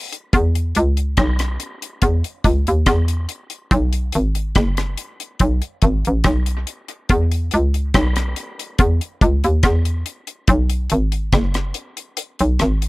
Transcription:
0.13 closed hi-hat
0.33 fm bass E2, kick, closed hi-hat
0.55 closed hi-hat
0.75 fm bass C#2, closed hi-hat
0.97 closed hi-hat
1.17 fm bass B1, kick, cross-stick, closed hi-hat
1.39 cross-stick, closed hi-hat
1.60 closed hi-hat
1.82 closed hi-hat
2.02 fm bass E2, kick, closed hi-hat
2.24 closed hi-hat
2.44 fm bass C#2, kick, closed hi-hat
2.67 fm bass D#2, closed hi-hat
2.86 fm bass E2, kick, cross-stick, closed hi-hat
3.08 closed hi-hat
3.29 closed hi-hat
3.50 closed hi-hat
3.71 fm bass B1, kick, closed hi-hat
3.93 closed hi-hat
4.12 fm bass G#1, closed hi-hat
4.35 closed hi-hat
4.55 fm bass F#1, kick, cross-stick, closed hi-hat
4.77 cross-stick, closed hi-hat
4.98 closed hi-hat
5.20 closed hi-hat
5.39 fm bass B1, kick, closed hi-hat
5.62 closed hi-hat
5.82 fm bass G#1, kick, closed hi-hat
6.05 fm bass A1, closed hi-hat
6.24 fm bass B1, kick, cross-stick, closed hi-hat
6.46 closed hi-hat
6.67 closed hi-hat
6.88 closed hi-hat
7.09 fm bass E2, kick, closed hi-hat
7.32 closed hi-hat
7.51 fm bass C#2, closed hi-hat
7.74 closed hi-hat
7.94 fm bass B1, kick, cross-stick, closed hi-hat
8.16 cross-stick, closed hi-hat
8.36 closed hi-hat
8.59 closed hi-hat
8.79 fm bass E2, kick, closed hi-hat
9.01 closed hi-hat
9.21 fm bass C#2, kick, closed hi-hat
9.44 fm bass D#2, closed hi-hat
9.63 fm bass E2, kick, cross-stick, closed hi-hat
9.85 closed hi-hat
10.06 closed hi-hat
10.27 closed hi-hat
10.48 fm bass B1, kick, closed hi-hat
10.70 closed hi-hat
10.90 fm bass G#1, closed hi-hat
11.12 closed hi-hat
11.32 fm bass F#1, kick, cross-stick, closed hi-hat
11.54 cross-stick, closed hi-hat
11.74 closed hi-hat
11.97 closed hi-hat
12.17 closed hi-hat
12.39 fm bass B1, closed hi-hat
12.59 fm bass G#1, cross-stick, closed hi-hat
12.82 closed hi-hat

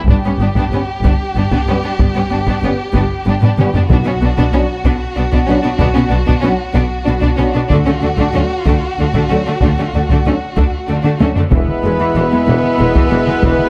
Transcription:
0.05 double bass section G1, viola section B3, violin section G4, taiko
0.10 cello section G2, violin section D4
0.25 cello section G2, viola section B3, violin section C#4
0.38 double bass section G1, cello section G2, viola section B3
0.42 violin section D4
0.56 cello section G2, viola section B3, violin section D4, taiko
0.70 double bass section G1, cello section G2, french horn section G3 B3, viola section B3
0.75 violin section C#4
1.03 double bass section G1, cello section G2, viola section B3, taiko
1.07 violin section D4
1.35 double bass section G1, cello section G2, viola section B3, violin section D4
1.51 cello section G2, viola section B3, violin section D4, taiko
1.67 double bass section G1, cello section G2, french horn section G3 B3, viola section B3, violin section C#4
1.83 cello section G2, viola section B3, violin section D4
1.99 double bass section G1, cello section G2, viola section B3, violin section D4, taiko
2.15 cello section G2, viola section B3, violin section C#4
2.30 double bass section G1, cello section G2, viola section B3, violin section D4
2.47 cello section G2, viola section B3, violin section D4, taiko
2.62 double bass section G1, cello section G2, french horn section G3 B3, viola section B3, violin section C#4
2.93 double bass section G1, cello section G2, viola section B3, violin section D4, taiko
3.25 double bass section G1, cello section G2, viola section B3, violin section D4
3.41 cello section G2, viola section B3, violin section D4, taiko low-mid
3.58 double bass section G1, cello section G2, french horn section G3 B3, viola section B3, violin section C#4, taiko mid
3.74 cello section G2, viola section B3, violin section D4, taiko low
3.89 double bass section B1, timpani B2, cello section B2, viola section B3, violin section D4 F#4, taiko
4.05 cello section B2, viola section B3, violin section C#4
4.21 double bass section B1, cello section B2, viola section B3, violin section D4
4.37 cello section B2, viola section B3, violin section D4, taiko
4.53 double bass section B1, cello section B2, french horn section F#3 D4, viola section B3, violin section C#4
4.85 double bass section B1, cello section B2, viola section B3, violin section D4, taiko
5.17 double bass section B1, cello section B2, viola section B3, violin section D4
5.32 cello section B2, viola section B3, violin section D4, taiko
5.48 double bass section B1, cello section B2, french horn section F#3 D4, viola section B3, violin section C#4
5.63 cello section B2, viola section B3, violin section D4
5.79 double bass section B1, cello section B2, viola section B3, violin section D4, taiko
5.95 cello section B2, viola section B3, violin section C#4
6.10 double bass section B1, cello section B2, viola section B3, violin section D4
6.26 cello section B2, viola section B3, violin section D4, taiko
6.42 double bass section B1, cello section B2, viola section B3, violin section C#4
6.46 french horn section F#3 D4
6.74 double bass section B1, cello section B2, viola section B3, violin section D4, taiko
7.05 double bass section B1, cello section B2, viola section B3, violin section D4
7.22 cello section B2, viola section B3, violin section D4, taiko
7.37 double bass section B1, cello section B2, french horn section F#3 D4, viola section B3, violin section C#4
7.53 cello section B2, viola section B3, violin section D4
7.69 double bass section D2, cello section D3, viola section A3, violin section D4 F#4, taiko
7.86 cello section D3, viola section A3, violin section C#4
8.02 double bass section D2, cello section D3, viola section A3, violin section D4
8.17 cello section D3, viola section A3, violin section D4, taiko
8.34 double bass section D2, cello section D3, french horn section F#3 D4, viola section A3, violin section C#4
8.66 double bass section D2, cello section D3, viola section A3, violin section D4, taiko
8.99 double bass section D2, cello section D3, viola section A3, violin section D4
9.14 cello section D3, viola section A3, violin section D4, taiko
9.29 double bass section D2, cello section D3, french horn section F#3 D4, viola section A3, violin section C#4
9.46 cello section D3, viola section A3, violin section D4
9.61 double bass section D2, cello section D3, viola section A3, violin section D4, taiko
9.79 cello section D3, viola section A3, violin section C#4
9.94 double bass section D2, cello section D3, viola section A3, violin section D4
10.09 cello section D3, viola section A3, violin section D4, taiko
10.25 double bass section D2, cello section D3, french horn section F#3 D4, viola section A3, violin section C#4
10.57 double bass section D2, cello section D3, viola section A3, violin section D4, taiko
10.88 double bass section D2, cello section D3, viola section A3, violin section D4
11.03 cello section D3, viola section A3, violin section D4, taiko mid
11.21 double bass section D2, cello section D3, french horn section F#3 D4, viola section A3, violin section C#4, taiko high
11.36 cello section D3, viola section A3, violin section D4, taiko low
11.51 double bass section E1, tuba E1, cello section E2, trombone section B2 G#3, viola section E3, violin section B3 B4, woodwind section B3 G#4 B4 E5, french horn section B3 E4, trumpet section B4, taiko
11.68 taiko mid
11.84 double bass section E1, tuba E1, cello section E2, viola section G#3
11.99 cello section E2, viola section E3
12.16 double bass section E1, tuba E1, cello section E2, viola section E3
12.32 cello section E2, viola section G#3
12.47 tuba E1, double bass section E1, cello section E2, viola section E3
12.63 taiko mid
12.79 tuba E1, double bass section E1, cello section E2, viola section G#3
12.95 cello section E2, viola section E3, taiko
13.10 tuba E1, double bass section E1, cello section E2, viola section E3
13.27 cello section E2, viola section G#3, taiko mid
13.42 tuba E1, double bass section E1, cello section E2, viola section E3, taiko
13.58 taiko mid

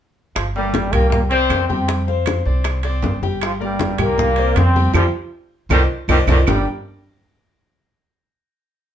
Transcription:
0.36 upright bass G1, trombone section F3 F4, high bongo, high conga, high timbale, claves
0.55 trombone section G2 G3, grand piano A#3 A#4 D5, high bongo, high conga
0.74 high bongo, high conga, high timbale, low timbale
0.91 upright bass C2, trombone section A#2 A#3, grand piano G3 G4 G5, low conga, high timbale, claves
1.10 trombone section A#2 A#3, high bongo, high conga, low conga
1.29 trombone section C3 C4, grand piano C4 C5 D5, high bongo, high timbale
1.50 upright bass F2, high bongo, low bongo, high conga, high timbale, low timbale, claves
1.68 trombone section C3 C4, grand piano G3 G4 G5, high bongo, high conga
1.88 grand piano G3 G4 G5, high bongo, high conga, high timbale
2.07 grand piano C4 C5 F5, high bongo, high conga
2.26 high bongo, high conga, high timbale, low timbale, claves
2.45 upright bass C2, grand piano C4 C5 D5, high conga
2.64 high bongo, high conga, high timbale, claves
2.83 grand piano C4 C5 D5, high bongo, high conga, high timbale
3.02 upright bass G1, high bongo, low bongo, high conga, low timbale
3.22 grand piano G3 G4 G5, high bongo, high conga
3.41 trombone section F3 F4, high bongo, high conga, high timbale, claves
3.60 trombone section G2 G3, grand piano A#3 A#4 D5, high bongo, high conga
3.79 high bongo, high conga, high timbale, low timbale
3.98 upright bass C2, trombone section A#2 A#3, grand piano G3 G4 G5, low conga, high timbale, claves
4.18 high bongo, high conga, low conga
4.36 grand piano C4 C5 D5, high bongo, high timbale
4.56 upright bass F2, trombone section C3 C4, high bongo, low bongo, high conga, high timbale, low timbale, claves
4.75 grand piano G3 G4 G5, high bongo, high conga
4.94 upright bass F2, trombone section C3 F3 G3, grand piano F4 G4 C5, low bongo, high conga, high timbale, claves
5.69 upright bass C2, trombone section D3 D#3 G3, grand piano C5 D5 D#5, low bongo, high conga, high timbale, claves
6.08 upright bass C2, trombone section D3 D#3 G3, grand piano C5 D5 D#5, low bongo, high conga, high timbale, claves
6.27 upright bass C2, trombone section D3 D#3 G3, grand piano C5 D5 D#5, low bongo, high conga, high timbale, claves
6.46 upright bass G1, grand piano G3 D4 G4 A#4 D5 G5, trombone section G3, low bongo, low conga, low timbale, claves

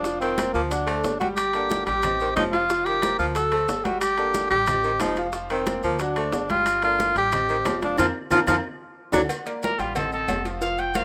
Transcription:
Already playing: upright bass F1, tenor saxophone D4
0.04 grand piano F3 F4 F5, high bongo, high conga, maracas
0.21 baritone saxophone D#3, tenor saxophone C4, high conga, high timbale, maracas
0.38 grand piano A#3 A#4 C5, high bongo, high conga, high timbale, low timbale, claves, maracas
0.54 upright bass D2, baritone saxophone F3, tenor saxophone A#3, high bongo, high conga, maracas
0.71 grand piano F#3 F#4 F#5, tenor saxophone D4, high bongo, high conga, high timbale, maracas
0.87 baritone saxophone A3, grand piano A3 A4 C5, high bongo, high conga, high timbale, claves, maracas
1.04 upright bass G1, high bongo, low bongo, high conga, low timbale, maracas
1.20 grand piano G3 G4 G5, tenor saxophone F#4, high bongo, high conga, high timbale, maracas
1.36 tenor saxophone G4, high bongo, high conga, high timbale, claves, maracas
1.53 baritone saxophone D3, grand piano A#3 A#4 D5, high bongo, high conga, high timbale, maracas
1.70 high bongo, high conga, low timbale, maracas
1.86 upright bass A1, grand piano G3 G4 G5, tenor saxophone G4, high bongo, high conga, high timbale, maracas
2.03 grand piano C4 C5 D#5, high bongo, high conga, low conga, high timbale, claves, maracas
2.20 baritone saxophone D#3, grand piano C4 C5 D#5, high conga, maracas
2.36 upright bass F1, baritone saxophone F3, tenor saxophone D#4, high bongo, low bongo, high conga, high timbale, low timbale, claves, maracas
2.52 grand piano F3 F4 F5, tenor saxophone F4, high bongo, high timbale, maracas
2.70 grand piano F3 F4 F5, high bongo, high conga, maracas
2.85 baritone saxophone D#3, tenor saxophone G4, high conga, high timbale, maracas
3.02 grand piano A#3 A#4 C5, high bongo, high conga, high timbale, low timbale, claves, maracas
3.19 upright bass D2, baritone saxophone F3, tenor saxophone F4, high bongo, high conga, maracas
3.35 grand piano F#3 F#4 F#5, tenor saxophone A4, high bongo, high conga, high timbale, maracas
3.52 baritone saxophone A3, grand piano A3 A4 C5, high bongo, high conga, high timbale, claves, maracas
3.68 upright bass G1, high bongo, low bongo, high conga, low timbale, maracas
3.84 grand piano G3 G4 G5, tenor saxophone F#4, high bongo, high conga, high timbale, maracas
4.01 tenor saxophone G4, high bongo, high conga, high timbale, claves, maracas
4.18 baritone saxophone D3, grand piano A#3 A#4 D5, high bongo, high conga, high timbale, maracas
4.34 high bongo, high conga, low timbale, maracas
4.50 upright bass A1, grand piano G3 G4 G5, tenor saxophone G4, high conga, high timbale, maracas
4.67 grand piano C4 C5 D#5, high bongo, high conga, low conga, high timbale, claves, maracas
4.84 baritone saxophone D#3, grand piano C4 C5 D#5, high conga, maracas
5.00 upright bass F1, baritone saxophone F3, tenor saxophone D#4, high bongo, low bongo, high conga, high timbale, low timbale, claves, maracas
5.16 grand piano F3 F4 F5, high bongo, high timbale, maracas
5.33 grand piano F3 F4 F5, high bongo, high conga, maracas
5.50 baritone saxophone D#3, tenor saxophone C4, high conga, high timbale, maracas
5.66 grand piano A#3 A#4 C5, high bongo, high conga, high timbale, low timbale, claves, maracas
5.83 upright bass D2, baritone saxophone F3, tenor saxophone A#3, high bongo, high conga, maracas
5.99 grand piano F#3 F#4 F#5, tenor saxophone D4, high bongo, high conga, high timbale, maracas
6.16 grand piano A3 A4 C5, baritone saxophone A3, high bongo, high conga, high timbale, claves, maracas
6.32 upright bass G1, high bongo, low bongo, high conga, low timbale, maracas
6.49 grand piano G3 G4 G5, tenor saxophone F4, high bongo, high conga, high timbale, maracas
6.66 high bongo, high conga, high timbale, claves, maracas
6.82 baritone saxophone D3, grand piano A#3 A#4 D5, tenor saxophone F4, high bongo, high conga, high timbale, maracas
6.98 high bongo, high conga, low timbale, maracas
7.16 upright bass A1, grand piano G3 G4 G5, tenor saxophone G4, high bongo, high conga, high timbale, maracas
7.32 grand piano C4 C5 D#5, high bongo, high conga, low conga, high timbale, claves, maracas
7.49 baritone saxophone D#3, grand piano C4 C5 D#5, high conga, maracas
7.65 upright bass F1, baritone saxophone F3, high bongo, low bongo, high conga, high timbale, low timbale, claves, maracas
7.81 grand piano F3 F4 F5, tenor saxophone D4, high bongo, high conga, high timbale, maracas
7.97 upright bass F2, baritone saxophone F3, grand piano C4 F4 A#4, tenor saxophone F4, low bongo, low conga, high timbale, claves, maracas
8.31 upright bass F2, baritone saxophone F3, grand piano C4 F4 A#4, tenor saxophone F4, low bongo, low conga, high timbale, claves, maracas
8.47 upright bass F2, baritone saxophone F3, grand piano C4 F4 A#4, tenor saxophone F4, low bongo, low conga, high timbale, claves, maracas
9.12 upright bass D2, baritone saxophone F#3, tenor saxophone D4, grand piano D4 F#4 A4, low bongo, low conga, high timbale, claves, maracas
9.29 cowbell, high conga, low agogo, claves, maracas
9.46 grand piano A#3 A#4 D5, high conga, low agogo, maracas
9.63 trumpet A#4, cowbell, high conga, low timbale, maracas
9.79 upright bass A1, grand piano G3 G4 G5, trumpet F4, high conga, low agogo, maracas
9.95 grand piano C4 C5 D#5, trumpet A4, cowbell, high conga, low conga, low agogo, claves, maracas
10.12 grand piano C4 C5 D#5, trumpet A4, high conga, maracas
10.28 upright bass F1, cowbell, high conga, low timbale, low agogo, claves, maracas
10.45 grand piano F3 F4 F5, cowbell, low agogo, maracas
10.61 grand piano F3 F4 F5, trumpet F5, cowbell, high conga, maracas
10.78 trumpet G5, high conga, low agogo, maracas
10.94 grand piano A#3 A#4 C5, trumpet F5, cowbell, high conga, low timbale, low agogo, claves, maracas

